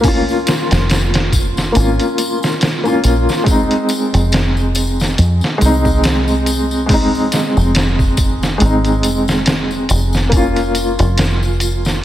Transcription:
0.00 0.43 C2 medium
0.00 1.72 A#3 medium
0.00 0.04 C#4 medium
0.00 0.08 F4 medium
0.00 kick medium
0.00 open hi-hat medium
0.04 1.71 C#4 medium
0.04 1.73 F4 medium
0.04 tambourine medium
0.29 tambourine soft
0.47 snare loud
0.47 closed hi-hat medium
0.47 tambourine medium
0.71 1.72 F1 medium
0.71 snare loud
0.71 closed hi-hat medium
0.71 tambourine soft
0.90 snare loud
0.90 closed hi-hat medium
0.90 tambourine soft
1.14 snare loud
1.14 closed hi-hat medium
1.14 tambourine soft
1.32 kick medium
1.32 closed hi-hat medium
1.32 tambourine medium
1.57 snare soft
1.57 tambourine soft
1.72 1.97 G#1 medium
1.72 2.79 A#3 medium
1.72 2.81 C#4 medium
1.72 closed hi-hat medium
1.72 tambourine medium
1.79 2.83 F4 medium
2.00 closed hi-hat soft
2.00 tambourine soft
2.18 closed hi-hat medium
2.18 tambourine medium
2.43 snare medium
2.43 tambourine soft
2.61 snare loud
2.61 closed hi-hat medium
2.61 tambourine soft
2.84 3.42 A#3 medium
2.84 3.42 C#4 medium
2.84 3.43 F4 medium
2.84 tambourine soft
3.04 3.25 A#1 medium
3.04 closed hi-hat medium
3.04 tambourine medium
3.29 snare soft
3.29 tambourine soft
3.44 5.55 G#3 medium
3.44 5.57 C4 medium
3.44 kick loud
3.44 closed hi-hat medium
3.44 tambourine medium
3.51 5.59 D#4 medium
3.71 closed hi-hat soft
3.71 tambourine soft
3.89 closed hi-hat medium
3.89 tambourine medium
4.14 5.15 F1 medium
4.14 closed hi-hat soft
4.14 tambourine soft
4.32 snare loud
4.32 closed hi-hat medium
4.32 tambourine soft
4.57 tambourine soft
4.75 closed hi-hat medium
4.75 tambourine medium
5.00 snare soft
5.00 tambourine soft
5.18 5.40 F2 medium
5.18 closed hi-hat medium
5.18 tambourine soft
5.41 snare soft
5.41 tambourine soft
5.58 7.29 C2 medium
5.58 6.84 G#3 medium
5.58 6.86 C4 medium
5.58 closed hi-hat medium
5.58 tambourine medium
5.65 6.87 D#4 loud
5.85 kick medium
5.85 tambourine soft
6.03 snare loud
6.03 closed hi-hat medium
6.03 tambourine soft
6.28 tambourine soft
6.46 closed hi-hat medium
6.46 tambourine medium
6.71 tambourine soft
6.86 8.55 G#3 medium
6.86 8.57 C4 medium
6.86 kick loud
6.86 open hi-hat medium
6.90 8.59 D#4 medium
6.90 tambourine soft
7.15 tambourine soft
7.32 snare medium
7.32 closed hi-hat medium
7.32 tambourine medium
7.57 8.57 F1 loud
7.57 tambourine soft
7.75 snare loud
7.75 closed hi-hat medium
7.75 tambourine soft
7.99 kick medium
7.99 tambourine soft
8.17 kick medium
8.17 closed hi-hat medium
8.17 tambourine medium
8.43 snare soft
8.43 tambourine soft
8.58 9.04 G#1 medium
8.58 10.27 G#3 medium
8.58 10.28 C4 medium
8.58 closed hi-hat medium
8.58 tambourine soft
8.65 10.30 D#4 medium
8.85 closed hi-hat soft
8.85 tambourine soft
9.03 9.86 F1 loud
9.03 closed hi-hat medium
9.03 tambourine medium
9.28 snare medium
9.28 tambourine soft
9.46 snare loud
9.46 closed hi-hat medium
9.46 tambourine soft
9.71 tambourine soft
9.89 10.95 F1 medium
9.89 closed hi-hat medium
9.89 tambourine medium
10.13 snare soft
10.13 tambourine soft
10.29 12.04 A#3 medium
10.29 12.04 C#4 medium
10.29 kick loud
10.29 closed hi-hat medium
10.29 tambourine soft
10.37 12.04 F4 medium
10.56 closed hi-hat soft
10.56 tambourine soft
10.75 closed hi-hat medium
10.75 tambourine medium
10.99 12.00 F1 loud
10.99 closed hi-hat soft
10.99 tambourine soft
11.18 snare loud
11.18 closed hi-hat medium
11.18 tambourine soft
11.43 tambourine soft
11.60 closed hi-hat medium
11.60 tambourine medium
11.85 snare soft
11.85 tambourine soft

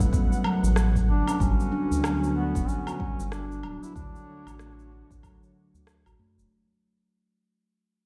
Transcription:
0.00 0.10 G1 medium
0.00 1.36 B2 medium
0.00 0.11 G3 medium
0.00 1.36 A3 medium
0.00 1.36 B3 medium
0.00 0.13 E4 medium
0.00 1.36 F#5 medium
0.00 kick loud
0.00 shaker medium
0.13 0.31 B3 medium
0.13 kick medium
0.13 shaker soft
0.32 shaker soft
0.44 0.63 F#3 loud
0.44 low woodblock medium
0.64 1.10 A1 medium
0.64 shaker medium
0.76 cross-stick medium
0.76 shaker medium
0.96 kick medium
0.96 shaker soft
1.08 1.23 G1 medium
1.08 1.42 D4 medium
1.27 1.35 C#4 medium
1.27 low woodblock medium
1.27 shaker medium
1.40 1.55 G1 loud
1.40 3.93 D3 medium
1.40 1.71 G3 medium
1.40 3.93 B3 medium
1.40 2.36 C#4 medium
1.40 3.93 F#4 medium
1.40 kick loud
1.40 shaker medium
1.60 shaker soft
1.72 1.90 D4 medium
1.91 2.57 D2 medium
1.91 shaker medium
2.04 2.22 F#3 medium
2.04 cross-stick loud
2.04 low woodblock medium
2.04 shaker medium
2.24 shaker soft
2.36 2.70 B3 medium
2.55 2.65 D1 medium
2.55 kick medium
2.55 shaker medium
2.68 3.34 C#4 medium
2.68 shaker soft
2.87 2.94 F#4 medium
2.87 low woodblock medium
2.87 shaker soft
3.00 3.30 G3 medium
3.00 kick medium
3.19 3.65 G1 medium
3.19 shaker medium
3.32 3.50 D4 medium
3.32 3.84 D4 loud
3.32 cross-stick loud
3.32 shaker medium
3.52 shaker soft
3.63 3.78 D1 medium
3.63 3.82 F#3 loud
3.63 low woodblock medium
3.83 3.95 E4 loud
3.83 shaker medium
3.95 4.10 D2 loud
3.95 6.48 D3 medium
3.95 6.48 A3 medium
3.95 5.19 D4 loud
3.95 6.48 F#4 medium
3.95 6.48 C#5 medium
3.95 kick loud
3.95 shaker medium
4.16 shaker soft
4.47 5.03 A1 medium
4.47 4.54 F#4 medium
4.47 low woodblock medium
4.47 shaker medium
4.59 4.90 A3 medium
4.59 cross-stick medium
4.59 shaker medium
4.79 shaker soft
4.92 5.10 D4 medium
5.11 5.20 A1 medium
5.11 kick loud
5.11 shaker medium
5.23 5.41 F#3 loud
5.23 kick loud
5.23 low woodblock medium
5.23 shaker soft
5.43 shaker soft
5.74 6.05 D2 medium
5.74 shaker medium
5.87 cross-stick loud
5.87 shaker medium
6.06 6.16 A1 loud
6.06 6.14 F#4 medium
6.06 low woodblock medium
6.06 shaker soft
6.19 6.39 F#2 medium
6.19 6.50 A3 medium
6.38 6.48 D1 loud
6.38 shaker medium

